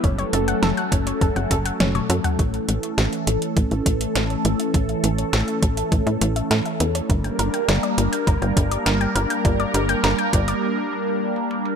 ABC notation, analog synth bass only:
X:1
M:4/4
L:1/16
Q:1/4=102
K:Amix
V:1 name="Analog synth bass" clef=bass
F,,, z F,,, z F,,, z F,,, z F,,, F,,, F,,, z F,,, z F,, z | A,,, z A,,, z A,,, z A,,, z A,,, A,,, A,,, z A,,, z A,,, z | A,,, z A,,, z A,,, z A,,, z A,,, A,, A,,, z A,, z E,, z | G,,, z G,,, z G,,, z G,,, z G,,, G,,, G,,, z G,,, z G,,, z |
G,,, z G,,, z G,,, z G,,, z8 z |]